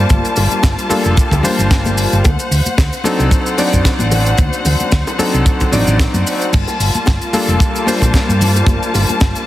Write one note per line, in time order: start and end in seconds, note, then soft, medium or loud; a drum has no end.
0.00 0.87 G3 medium
0.00 2.20 G3 medium
0.00 0.87 A#3 medium
0.00 2.20 A#3 medium
0.00 0.87 D4 medium
0.00 0.88 F4 medium
0.00 2.20 F4 medium
0.00 0.88 C5 medium
0.00 2.20 A5 medium
0.09 0.20 G1 loud
0.09 kick loud
0.09 closed hi-hat medium
0.09 high conga loud
0.09 cabasa medium
0.09 shaker medium
0.25 closed hi-hat medium
0.25 cabasa soft
0.25 shaker soft
0.36 0.47 G1 medium
0.36 open hi-hat loud
0.36 high bongo medium
0.36 shaker medium
0.51 muted fingered electric bass stroke soft
0.51 closed hi-hat medium
0.51 high conga medium
0.51 cabasa medium
0.51 shaker medium
0.63 0.74 G1 loud
0.63 kick loud
0.63 snare loud
0.63 closed hi-hat medium
0.63 cabasa medium
0.63 shaker medium
0.79 closed hi-hat medium
0.79 cabasa soft
0.79 shaker soft
0.89 1.41 G3 medium
0.89 1.41 A#3 medium
0.89 1.41 D4 medium
0.89 1.41 F4 medium
0.89 1.41 A4 medium
0.89 muted fingered electric bass stroke soft
0.89 open hi-hat loud
0.89 high bongo medium
0.89 high conga medium
0.89 shaker medium
1.04 1.13 F1 medium
1.04 closed hi-hat medium
1.04 cabasa medium
1.04 shaker medium
1.17 kick loud
1.17 closed hi-hat medium
1.17 cabasa medium
1.17 shaker medium
1.31 1.40 D2 loud
1.31 kick medium
1.31 closed hi-hat medium
1.31 high bongo medium
1.31 cabasa soft
1.31 shaker soft
1.43 2.22 G3 medium
1.43 2.23 A#3 medium
1.43 2.23 D4 medium
1.43 2.23 F4 medium
1.43 2.23 C5 medium
1.43 open hi-hat loud
1.43 high conga medium
1.43 low conga medium
1.43 shaker medium
1.58 2.05 G1 medium
1.58 closed hi-hat medium
1.58 low conga medium
1.58 cabasa medium
1.58 shaker medium
1.71 kick loud
1.71 snare loud
1.71 closed hi-hat medium
1.71 cabasa medium
1.71 shaker medium
1.84 closed hi-hat medium
1.84 high bongo soft
1.84 high conga loud
1.84 cabasa soft
1.84 shaker soft
1.98 open hi-hat loud
1.98 shaker medium
2.12 2.21 G1 medium
2.12 closed hi-hat medium
2.12 cabasa medium
2.12 shaker soft
2.24 2.35 D2 loud
2.24 6.49 C5 medium
2.24 6.49 F#5 medium
2.24 kick loud
2.24 closed hi-hat medium
2.24 high bongo medium
2.24 high conga medium
2.24 cabasa medium
2.24 shaker medium
2.39 closed hi-hat medium
2.39 cabasa soft
2.39 shaker soft
2.51 2.61 D2 medium
2.51 open hi-hat loud
2.51 shaker medium
2.66 muted fingered electric bass stroke soft
2.66 closed hi-hat medium
2.66 high conga medium
2.66 cabasa medium
2.66 shaker medium
2.78 2.88 D2 loud
2.78 kick loud
2.78 snare loud
2.78 closed hi-hat medium
2.78 high bongo medium
2.78 cabasa medium
2.78 shaker medium
2.93 closed hi-hat medium
2.93 cabasa soft
2.93 shaker soft
3.04 3.55 F#3 medium
3.04 3.55 C4 medium
3.04 3.55 D4 medium
3.04 3.55 D#4 medium
3.04 3.56 A4 medium
3.04 open hi-hat medium
3.04 high conga medium
3.04 shaker medium
3.19 3.28 C2 medium
3.19 closed hi-hat medium
3.19 high bongo medium
3.19 cabasa medium
3.19 shaker medium
3.31 kick loud
3.31 closed hi-hat medium
3.31 cabasa medium
3.31 shaker medium
3.46 closed hi-hat medium
3.46 cabasa soft
3.46 shaker soft
3.57 5.16 F#3 medium
3.57 5.16 C4 medium
3.57 5.16 D4 medium
3.57 5.16 D#4 medium
3.57 5.17 D5 medium
3.57 open hi-hat loud
3.57 high conga medium
3.57 shaker medium
3.73 3.81 F#2 medium
3.73 kick medium
3.73 closed hi-hat medium
3.73 high bongo soft
3.73 cabasa medium
3.73 shaker medium
3.85 kick loud
3.85 snare loud
3.85 closed hi-hat medium
3.85 cabasa medium
3.85 shaker medium
3.99 4.32 A1 medium
3.99 closed hi-hat medium
3.99 high conga medium
3.99 cabasa soft
3.99 shaker soft
4.11 open hi-hat loud
4.11 high bongo medium
4.11 low conga medium
4.11 shaker medium
4.26 closed hi-hat medium
4.26 cabasa medium
4.26 shaker medium
4.38 4.49 D2 loud
4.38 kick loud
4.38 closed hi-hat medium
4.38 high conga medium
4.38 cabasa medium
4.38 shaker medium
4.53 closed hi-hat medium
4.53 cabasa soft
4.53 shaker soft
4.65 4.75 D2 medium
4.65 open hi-hat loud
4.65 high bongo medium
4.65 low conga medium
4.65 shaker medium
4.80 closed hi-hat medium
4.80 high conga medium
4.80 cabasa medium
4.80 shaker medium
4.91 5.02 D2 loud
4.91 kick loud
4.91 snare loud
4.91 closed hi-hat medium
4.91 cabasa medium
4.91 shaker medium
5.07 closed hi-hat medium
5.07 high bongo loud
5.07 cabasa soft
5.07 shaker soft
5.18 5.69 F#3 medium
5.18 5.70 C4 medium
5.18 5.70 D4 medium
5.18 5.70 D#4 medium
5.18 5.70 A4 medium
5.18 muted fingered electric bass stroke soft
5.18 open hi-hat loud
5.18 high conga medium
5.18 shaker medium
5.34 5.42 C2 medium
5.34 closed hi-hat medium
5.34 cabasa medium
5.34 shaker medium
5.46 kick loud
5.46 closed hi-hat medium
5.46 cabasa medium
5.46 shaker medium
5.60 kick medium
5.60 closed hi-hat medium
5.60 high bongo medium
5.60 cabasa soft
5.60 shaker soft
5.71 5.83 A1 medium
5.71 6.51 F#3 medium
5.71 6.51 C4 medium
5.71 6.51 D4 medium
5.71 6.52 D#4 medium
5.71 6.52 D5 medium
5.71 open hi-hat loud
5.71 high conga medium
5.71 low conga medium
5.71 shaker medium
5.87 6.04 A1 loud
5.87 closed hi-hat medium
5.87 low conga medium
5.87 cabasa medium
5.87 shaker medium
6.00 kick loud
6.00 snare loud
6.00 closed hi-hat medium
6.00 high bongo medium
6.00 cabasa medium
6.00 shaker medium
6.14 6.22 F#2 medium
6.14 closed hi-hat medium
6.14 high conga medium
6.14 cabasa soft
6.14 shaker soft
6.26 open hi-hat loud
6.26 shaker loud
6.41 closed hi-hat medium
6.41 cabasa medium
6.41 shaker soft
6.53 6.63 G1 loud
6.53 9.47 G3 medium
6.53 9.47 A#3 medium
6.53 9.47 F4 medium
6.53 9.47 A5 medium
6.53 kick loud
6.53 closed hi-hat medium
6.53 crash medium
6.53 high conga medium
6.53 cabasa medium
6.53 shaker medium
6.67 closed hi-hat medium
6.67 high bongo medium
6.67 cabasa soft
6.67 shaker soft
6.80 6.90 G1 medium
6.80 open hi-hat loud
6.80 shaker medium
6.94 muted fingered electric bass stroke soft
6.94 closed hi-hat medium
6.94 high conga medium
6.94 cabasa medium
6.94 shaker medium
7.06 7.17 G1 loud
7.06 kick loud
7.06 snare loud
7.06 closed hi-hat medium
7.06 high bongo medium
7.06 cabasa medium
7.06 shaker medium
7.22 closed hi-hat medium
7.22 cabasa soft
7.22 shaker soft
7.33 7.84 G3 medium
7.33 7.84 A#3 medium
7.33 7.84 D4 medium
7.33 7.84 F4 medium
7.33 7.84 A4 medium
7.33 open hi-hat loud
7.33 high conga medium
7.33 shaker medium
7.48 7.56 F1 medium
7.48 closed hi-hat medium
7.48 cabasa medium
7.48 shaker medium
7.59 kick loud
7.59 closed hi-hat medium
7.59 high bongo soft
7.59 cabasa medium
7.59 shaker medium
7.75 closed hi-hat medium
7.75 cabasa soft
7.75 shaker soft
7.86 9.44 G3 medium
7.86 9.45 A#3 medium
7.86 9.45 D4 medium
7.86 9.45 F4 medium
7.86 9.45 C5 medium
7.86 open hi-hat loud
7.86 high conga medium
7.86 shaker medium
8.02 8.10 A#1 medium
8.02 kick medium
8.02 closed hi-hat medium
8.02 high bongo medium
8.02 cabasa medium
8.02 shaker medium
8.13 kick loud
8.13 snare loud
8.13 closed hi-hat medium
8.13 cabasa medium
8.13 shaker medium
8.29 8.61 G2 medium
8.29 closed hi-hat medium
8.29 high conga medium
8.29 cabasa soft
8.29 shaker soft
8.41 open hi-hat loud
8.41 low conga medium
8.41 shaker loud
8.55 closed hi-hat medium
8.55 high bongo medium
8.55 cabasa medium
8.55 shaker medium
8.67 8.77 G1 loud
8.67 kick loud
8.67 closed hi-hat medium
8.67 high conga loud
8.67 cabasa medium
8.67 shaker medium
8.83 closed hi-hat medium
8.83 cabasa soft
8.83 shaker soft
8.94 9.04 G1 medium
8.94 open hi-hat loud
8.94 high bongo medium
8.94 shaker medium
9.09 closed hi-hat medium
9.09 high conga medium
9.09 cabasa medium
9.09 shaker medium
9.20 9.31 G1 loud
9.20 kick loud
9.20 snare loud
9.20 closed hi-hat medium
9.20 cabasa medium
9.20 shaker medium
9.35 closed hi-hat medium
9.35 cabasa soft
9.35 shaker soft